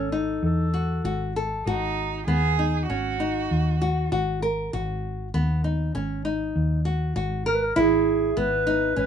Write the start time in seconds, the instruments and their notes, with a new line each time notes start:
Already playing: fretless electric bass G#1, clarinet A4
0.12 nylon-string guitar D#4
0.43 fretless electric bass E2, clarinet A4
0.74 nylon-string guitar F#4
1.04 fretless electric bass G#1, nylon-string guitar F#4
1.36 nylon-string guitar A4
1.66 fretless electric bass G#1, cello D#4, nylon-string guitar F#4
2.27 fretless electric bass D#2, nylon-string guitar B3, cello G#4
2.59 nylon-string guitar D#4
2.89 fretless electric bass G#1, nylon-string guitar C#4, cello F#4
3.20 nylon-string guitar D#4
3.51 fretless electric bass D#2
3.82 nylon-string guitar F#4
4.12 fretless electric bass G#1, nylon-string guitar F#4
4.42 nylon-string guitar A#4
4.73 fretless electric bass G#1, nylon-string guitar F#4
5.34 fretless electric bass D#2, nylon-string guitar B3
5.64 nylon-string guitar D#4
5.95 fretless electric bass G#1, nylon-string guitar C#4
6.25 nylon-string guitar D#4
6.56 fretless electric bass D#2
6.85 nylon-string guitar F#4
7.16 fretless electric bass G#1, nylon-string guitar F#4
7.46 nylon-string guitar A#4, clarinet A#4
7.53 clarinet B4
7.63 clarinet A#4
7.76 fretless electric bass G#1, nylon-string guitar E4, clarinet G#4
8.37 fretless electric bass G#1, nylon-string guitar B3, clarinet B4
8.67 nylon-string guitar D#4
8.96 fretless electric bass G#1, nylon-string guitar C#4, clarinet B4